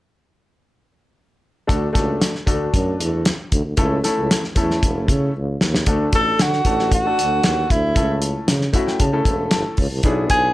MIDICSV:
0, 0, Header, 1, 5, 480
1, 0, Start_track
1, 0, Key_signature, 2, "major"
1, 0, Tempo, 522193
1, 1553, Time_signature, 4, 2, 24, 8
1, 9684, End_track
2, 0, Start_track
2, 0, Title_t, "Tenor saxophone"
2, 0, Program_c, 0, 66
2, 5657, Note_on_c, 0, 69, 91
2, 5901, Note_on_c, 0, 66, 87
2, 5915, Note_off_c, 0, 69, 0
2, 6370, Note_off_c, 0, 66, 0
2, 6382, Note_on_c, 0, 66, 93
2, 7087, Note_on_c, 0, 64, 77
2, 7100, Note_off_c, 0, 66, 0
2, 7562, Note_off_c, 0, 64, 0
2, 9474, Note_on_c, 0, 68, 101
2, 9684, Note_off_c, 0, 68, 0
2, 9684, End_track
3, 0, Start_track
3, 0, Title_t, "Grand piano"
3, 0, Program_c, 1, 0
3, 1539, Note_on_c, 1, 57, 74
3, 1539, Note_on_c, 1, 62, 70
3, 1546, Note_on_c, 1, 66, 68
3, 1547, Note_on_c, 1, 69, 86
3, 1715, Note_off_c, 1, 57, 0
3, 1716, Note_off_c, 1, 62, 0
3, 1719, Note_off_c, 1, 66, 0
3, 1720, Note_off_c, 1, 69, 0
3, 1772, Note_on_c, 1, 57, 82
3, 1776, Note_on_c, 1, 62, 67
3, 1782, Note_on_c, 1, 66, 68
3, 1788, Note_on_c, 1, 69, 87
3, 2122, Note_off_c, 1, 57, 0
3, 2124, Note_off_c, 1, 62, 0
3, 2127, Note_off_c, 1, 66, 0
3, 2130, Note_off_c, 1, 69, 0
3, 2265, Note_on_c, 1, 57, 75
3, 2267, Note_on_c, 1, 62, 68
3, 2275, Note_on_c, 1, 66, 69
3, 2280, Note_on_c, 1, 69, 78
3, 2949, Note_off_c, 1, 57, 0
3, 2950, Note_off_c, 1, 62, 0
3, 2954, Note_off_c, 1, 66, 0
3, 2956, Note_off_c, 1, 69, 0
3, 3466, Note_on_c, 1, 57, 80
3, 3471, Note_on_c, 1, 61, 76
3, 3476, Note_on_c, 1, 64, 74
3, 3479, Note_on_c, 1, 69, 93
3, 3641, Note_off_c, 1, 57, 0
3, 3643, Note_off_c, 1, 61, 0
3, 3646, Note_off_c, 1, 64, 0
3, 3648, Note_off_c, 1, 69, 0
3, 3710, Note_on_c, 1, 61, 73
3, 3711, Note_on_c, 1, 57, 77
3, 3719, Note_on_c, 1, 64, 77
3, 3719, Note_on_c, 1, 69, 88
3, 4053, Note_off_c, 1, 57, 0
3, 4053, Note_off_c, 1, 61, 0
3, 4057, Note_off_c, 1, 69, 0
3, 4058, Note_off_c, 1, 64, 0
3, 4187, Note_on_c, 1, 57, 78
3, 4198, Note_on_c, 1, 61, 72
3, 4200, Note_on_c, 1, 64, 73
3, 4204, Note_on_c, 1, 69, 82
3, 4871, Note_off_c, 1, 57, 0
3, 4876, Note_off_c, 1, 61, 0
3, 4877, Note_off_c, 1, 64, 0
3, 4879, Note_off_c, 1, 69, 0
3, 5396, Note_on_c, 1, 62, 72
3, 5398, Note_on_c, 1, 57, 82
3, 5402, Note_on_c, 1, 66, 76
3, 5411, Note_on_c, 1, 69, 82
3, 5906, Note_off_c, 1, 62, 0
3, 5907, Note_off_c, 1, 57, 0
3, 5909, Note_off_c, 1, 66, 0
3, 5913, Note_off_c, 1, 69, 0
3, 6119, Note_on_c, 1, 57, 70
3, 6122, Note_on_c, 1, 62, 61
3, 6126, Note_on_c, 1, 69, 76
3, 6131, Note_on_c, 1, 66, 57
3, 6373, Note_off_c, 1, 57, 0
3, 6374, Note_off_c, 1, 62, 0
3, 6376, Note_off_c, 1, 69, 0
3, 6379, Note_off_c, 1, 66, 0
3, 6483, Note_on_c, 1, 57, 63
3, 6487, Note_on_c, 1, 62, 60
3, 6494, Note_on_c, 1, 66, 58
3, 6496, Note_on_c, 1, 69, 74
3, 7073, Note_off_c, 1, 57, 0
3, 7075, Note_off_c, 1, 62, 0
3, 7079, Note_off_c, 1, 66, 0
3, 7080, Note_off_c, 1, 69, 0
3, 7307, Note_on_c, 1, 57, 67
3, 7315, Note_on_c, 1, 61, 62
3, 7322, Note_on_c, 1, 64, 60
3, 7326, Note_on_c, 1, 69, 80
3, 7820, Note_off_c, 1, 57, 0
3, 7824, Note_off_c, 1, 61, 0
3, 7827, Note_off_c, 1, 64, 0
3, 7829, Note_off_c, 1, 69, 0
3, 8023, Note_on_c, 1, 57, 78
3, 8028, Note_on_c, 1, 61, 76
3, 8034, Note_on_c, 1, 76, 66
3, 8036, Note_on_c, 1, 64, 76
3, 8045, Note_on_c, 1, 66, 90
3, 8146, Note_off_c, 1, 76, 0
3, 8151, Note_on_c, 1, 79, 64
3, 8265, Note_off_c, 1, 79, 0
3, 8275, Note_on_c, 1, 81, 66
3, 8283, Note_off_c, 1, 57, 0
3, 8286, Note_off_c, 1, 61, 0
3, 8290, Note_off_c, 1, 64, 0
3, 8295, Note_off_c, 1, 66, 0
3, 8387, Note_on_c, 1, 57, 72
3, 8391, Note_on_c, 1, 61, 70
3, 8395, Note_on_c, 1, 64, 71
3, 8396, Note_on_c, 1, 69, 88
3, 8721, Note_off_c, 1, 81, 0
3, 8746, Note_on_c, 1, 81, 69
3, 8983, Note_off_c, 1, 57, 0
3, 8985, Note_off_c, 1, 61, 0
3, 8987, Note_off_c, 1, 64, 0
3, 8988, Note_off_c, 1, 69, 0
3, 9195, Note_off_c, 1, 81, 0
3, 9233, Note_on_c, 1, 59, 85
3, 9236, Note_on_c, 1, 62, 76
3, 9240, Note_on_c, 1, 64, 78
3, 9244, Note_on_c, 1, 68, 90
3, 9684, Note_off_c, 1, 59, 0
3, 9684, Note_off_c, 1, 62, 0
3, 9684, Note_off_c, 1, 64, 0
3, 9684, Note_off_c, 1, 68, 0
3, 9684, End_track
4, 0, Start_track
4, 0, Title_t, "Tuba"
4, 0, Program_c, 2, 58
4, 1556, Note_on_c, 2, 38, 96
4, 1750, Note_off_c, 2, 38, 0
4, 1800, Note_on_c, 2, 37, 81
4, 1992, Note_off_c, 2, 37, 0
4, 2162, Note_on_c, 2, 38, 41
4, 2208, Note_off_c, 2, 38, 0
4, 2271, Note_on_c, 2, 38, 83
4, 2467, Note_off_c, 2, 38, 0
4, 2516, Note_on_c, 2, 42, 85
4, 2711, Note_off_c, 2, 42, 0
4, 2758, Note_on_c, 2, 40, 89
4, 3049, Note_off_c, 2, 40, 0
4, 3239, Note_on_c, 2, 38, 97
4, 3335, Note_off_c, 2, 38, 0
4, 3355, Note_on_c, 2, 38, 67
4, 3453, Note_off_c, 2, 38, 0
4, 3474, Note_on_c, 2, 37, 99
4, 3670, Note_off_c, 2, 37, 0
4, 3843, Note_on_c, 2, 37, 90
4, 3938, Note_off_c, 2, 37, 0
4, 4084, Note_on_c, 2, 40, 41
4, 4131, Note_off_c, 2, 40, 0
4, 4193, Note_on_c, 2, 40, 86
4, 4390, Note_off_c, 2, 40, 0
4, 4440, Note_on_c, 2, 28, 79
4, 4677, Note_on_c, 2, 49, 94
4, 4690, Note_off_c, 2, 28, 0
4, 4872, Note_off_c, 2, 49, 0
4, 4925, Note_on_c, 2, 37, 82
4, 5117, Note_off_c, 2, 37, 0
4, 5163, Note_on_c, 2, 39, 84
4, 5356, Note_off_c, 2, 39, 0
4, 5395, Note_on_c, 2, 38, 97
4, 5591, Note_off_c, 2, 38, 0
4, 5637, Note_on_c, 2, 33, 75
4, 5832, Note_off_c, 2, 33, 0
4, 5883, Note_on_c, 2, 50, 83
4, 6076, Note_off_c, 2, 50, 0
4, 6113, Note_on_c, 2, 33, 79
4, 6505, Note_off_c, 2, 33, 0
4, 6603, Note_on_c, 2, 38, 78
4, 6796, Note_off_c, 2, 38, 0
4, 6838, Note_on_c, 2, 39, 78
4, 7032, Note_off_c, 2, 39, 0
4, 7083, Note_on_c, 2, 38, 90
4, 7275, Note_off_c, 2, 38, 0
4, 7316, Note_on_c, 2, 37, 91
4, 7706, Note_off_c, 2, 37, 0
4, 7798, Note_on_c, 2, 49, 85
4, 7992, Note_off_c, 2, 49, 0
4, 8271, Note_on_c, 2, 49, 86
4, 8467, Note_off_c, 2, 49, 0
4, 8507, Note_on_c, 2, 28, 78
4, 8705, Note_off_c, 2, 28, 0
4, 8758, Note_on_c, 2, 31, 86
4, 8854, Note_off_c, 2, 31, 0
4, 8993, Note_on_c, 2, 37, 89
4, 9091, Note_off_c, 2, 37, 0
4, 9103, Note_on_c, 2, 36, 78
4, 9205, Note_off_c, 2, 36, 0
4, 9227, Note_on_c, 2, 35, 95
4, 9424, Note_off_c, 2, 35, 0
4, 9467, Note_on_c, 2, 35, 85
4, 9663, Note_off_c, 2, 35, 0
4, 9684, End_track
5, 0, Start_track
5, 0, Title_t, "Drums"
5, 1556, Note_on_c, 9, 36, 88
5, 1561, Note_on_c, 9, 42, 77
5, 1647, Note_off_c, 9, 36, 0
5, 1653, Note_off_c, 9, 42, 0
5, 1794, Note_on_c, 9, 36, 80
5, 1796, Note_on_c, 9, 42, 65
5, 1803, Note_on_c, 9, 38, 32
5, 1886, Note_off_c, 9, 36, 0
5, 1888, Note_off_c, 9, 42, 0
5, 1895, Note_off_c, 9, 38, 0
5, 2036, Note_on_c, 9, 42, 89
5, 2037, Note_on_c, 9, 38, 100
5, 2128, Note_off_c, 9, 42, 0
5, 2129, Note_off_c, 9, 38, 0
5, 2161, Note_on_c, 9, 38, 32
5, 2253, Note_off_c, 9, 38, 0
5, 2271, Note_on_c, 9, 36, 74
5, 2275, Note_on_c, 9, 42, 70
5, 2363, Note_off_c, 9, 36, 0
5, 2367, Note_off_c, 9, 42, 0
5, 2516, Note_on_c, 9, 36, 91
5, 2517, Note_on_c, 9, 42, 75
5, 2608, Note_off_c, 9, 36, 0
5, 2609, Note_off_c, 9, 42, 0
5, 2762, Note_on_c, 9, 42, 74
5, 2854, Note_off_c, 9, 42, 0
5, 2991, Note_on_c, 9, 42, 74
5, 2996, Note_on_c, 9, 38, 108
5, 3083, Note_off_c, 9, 42, 0
5, 3088, Note_off_c, 9, 38, 0
5, 3235, Note_on_c, 9, 42, 69
5, 3238, Note_on_c, 9, 36, 82
5, 3327, Note_off_c, 9, 42, 0
5, 3330, Note_off_c, 9, 36, 0
5, 3467, Note_on_c, 9, 42, 81
5, 3473, Note_on_c, 9, 36, 93
5, 3559, Note_off_c, 9, 42, 0
5, 3565, Note_off_c, 9, 36, 0
5, 3716, Note_on_c, 9, 42, 64
5, 3723, Note_on_c, 9, 38, 33
5, 3808, Note_off_c, 9, 42, 0
5, 3815, Note_off_c, 9, 38, 0
5, 3961, Note_on_c, 9, 42, 91
5, 3962, Note_on_c, 9, 38, 97
5, 4053, Note_off_c, 9, 38, 0
5, 4053, Note_off_c, 9, 42, 0
5, 4082, Note_on_c, 9, 38, 33
5, 4174, Note_off_c, 9, 38, 0
5, 4190, Note_on_c, 9, 42, 74
5, 4192, Note_on_c, 9, 36, 76
5, 4282, Note_off_c, 9, 42, 0
5, 4284, Note_off_c, 9, 36, 0
5, 4325, Note_on_c, 9, 38, 30
5, 4417, Note_off_c, 9, 38, 0
5, 4438, Note_on_c, 9, 36, 83
5, 4441, Note_on_c, 9, 42, 72
5, 4530, Note_off_c, 9, 36, 0
5, 4533, Note_off_c, 9, 42, 0
5, 4673, Note_on_c, 9, 36, 84
5, 4680, Note_on_c, 9, 42, 76
5, 4765, Note_off_c, 9, 36, 0
5, 4772, Note_off_c, 9, 42, 0
5, 5156, Note_on_c, 9, 38, 85
5, 5248, Note_off_c, 9, 38, 0
5, 5281, Note_on_c, 9, 38, 81
5, 5373, Note_off_c, 9, 38, 0
5, 5390, Note_on_c, 9, 42, 79
5, 5394, Note_on_c, 9, 36, 88
5, 5482, Note_off_c, 9, 42, 0
5, 5486, Note_off_c, 9, 36, 0
5, 5631, Note_on_c, 9, 42, 67
5, 5634, Note_on_c, 9, 36, 84
5, 5723, Note_off_c, 9, 42, 0
5, 5726, Note_off_c, 9, 36, 0
5, 5878, Note_on_c, 9, 38, 100
5, 5878, Note_on_c, 9, 42, 86
5, 5970, Note_off_c, 9, 38, 0
5, 5970, Note_off_c, 9, 42, 0
5, 6001, Note_on_c, 9, 38, 30
5, 6093, Note_off_c, 9, 38, 0
5, 6111, Note_on_c, 9, 42, 73
5, 6112, Note_on_c, 9, 36, 78
5, 6203, Note_off_c, 9, 42, 0
5, 6204, Note_off_c, 9, 36, 0
5, 6242, Note_on_c, 9, 38, 32
5, 6334, Note_off_c, 9, 38, 0
5, 6357, Note_on_c, 9, 36, 83
5, 6357, Note_on_c, 9, 42, 78
5, 6449, Note_off_c, 9, 36, 0
5, 6449, Note_off_c, 9, 42, 0
5, 6607, Note_on_c, 9, 42, 71
5, 6699, Note_off_c, 9, 42, 0
5, 6834, Note_on_c, 9, 42, 74
5, 6839, Note_on_c, 9, 38, 108
5, 6926, Note_off_c, 9, 42, 0
5, 6931, Note_off_c, 9, 38, 0
5, 7081, Note_on_c, 9, 36, 84
5, 7083, Note_on_c, 9, 42, 70
5, 7173, Note_off_c, 9, 36, 0
5, 7175, Note_off_c, 9, 42, 0
5, 7315, Note_on_c, 9, 42, 83
5, 7316, Note_on_c, 9, 36, 90
5, 7407, Note_off_c, 9, 42, 0
5, 7408, Note_off_c, 9, 36, 0
5, 7552, Note_on_c, 9, 42, 67
5, 7644, Note_off_c, 9, 42, 0
5, 7794, Note_on_c, 9, 42, 91
5, 7795, Note_on_c, 9, 38, 100
5, 7886, Note_off_c, 9, 42, 0
5, 7887, Note_off_c, 9, 38, 0
5, 7916, Note_on_c, 9, 38, 33
5, 8008, Note_off_c, 9, 38, 0
5, 8030, Note_on_c, 9, 36, 79
5, 8030, Note_on_c, 9, 42, 73
5, 8122, Note_off_c, 9, 36, 0
5, 8122, Note_off_c, 9, 42, 0
5, 8159, Note_on_c, 9, 38, 32
5, 8251, Note_off_c, 9, 38, 0
5, 8270, Note_on_c, 9, 42, 73
5, 8272, Note_on_c, 9, 36, 83
5, 8362, Note_off_c, 9, 42, 0
5, 8364, Note_off_c, 9, 36, 0
5, 8506, Note_on_c, 9, 36, 90
5, 8512, Note_on_c, 9, 42, 73
5, 8598, Note_off_c, 9, 36, 0
5, 8604, Note_off_c, 9, 42, 0
5, 8739, Note_on_c, 9, 42, 81
5, 8744, Note_on_c, 9, 38, 101
5, 8831, Note_off_c, 9, 42, 0
5, 8836, Note_off_c, 9, 38, 0
5, 8981, Note_on_c, 9, 46, 53
5, 8990, Note_on_c, 9, 36, 77
5, 9073, Note_off_c, 9, 46, 0
5, 9082, Note_off_c, 9, 36, 0
5, 9220, Note_on_c, 9, 42, 81
5, 9225, Note_on_c, 9, 36, 85
5, 9312, Note_off_c, 9, 42, 0
5, 9317, Note_off_c, 9, 36, 0
5, 9465, Note_on_c, 9, 42, 69
5, 9467, Note_on_c, 9, 36, 84
5, 9557, Note_off_c, 9, 42, 0
5, 9559, Note_off_c, 9, 36, 0
5, 9684, End_track
0, 0, End_of_file